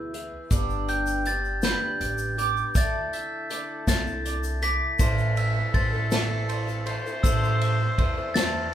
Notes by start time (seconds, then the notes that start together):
Already playing: D2 E2 B2 E3 B3 E4 G#4
0.14 E3 B3 E4 G#4, closed hi-hat
0.50 G1 G2 D3 G3 B3 D4 G4 D5, kick, closed hi-hat, shaker
0.70 shaker
0.88 G5 G6, closed hi-hat, shaker
1.07 shaker
1.25 G3 B3 D4 G4 D5 A6, closed hi-hat
1.45 shaker
1.63 G2 D3 G3 B3 D4 G4 B5 G6, snare, closed hi-hat, shaker
2.00 A1 D5, closed hi-hat
2.18 shaker
2.37 G3 B3 D4 G4 D6, closed hi-hat
2.57 shaker
2.75 D2 D3 A3 E4 A4 D5 A6, kick, closed hi-hat, shaker
3.13 E5, closed hi-hat
3.50 D3 A3 E4 A4 D5, closed hi-hat, shaker
3.87 C2 D3 A3 E4 A4 A5 A6, kick, snare, closed hi-hat, shaker
4.07 shaker
4.25 D5, closed hi-hat
4.44 shaker
4.62 A3 E4 A4 D6 B6, closed hi-hat, shaker
4.99 A1 A2 E3 C4 E4 A4 C5, kick, ride, shaker
5.18 shaker
5.36 E5, ride, shaker
5.56 C4 E4 A4
5.73 A1 E3 C4 E4 A4 C5 A6, kick, ride
5.93 C4 E4 A4
6.11 A2 E3 C4 E4 A4 A5, snare, ride, shaker
6.49 C5, ride, shaker
6.67 C4 E4 A4, shaker
6.86 E3 C4 E4 A4 C5 C6, ride
7.06 C4 E4 A4, shaker
7.23 A1 A2 E3 C4 E4 A4 C5 E6, kick, ride, shaker
7.44 shaker
7.61 E5, ride, shaker
7.80 C4 E4 A4
7.98 E2 E3 C4 E4 A4 C5, kick, ride
8.17 C4 E4 A4
8.34 A2 E3 C4 E4 A4 A5 A6, snare, ride, shaker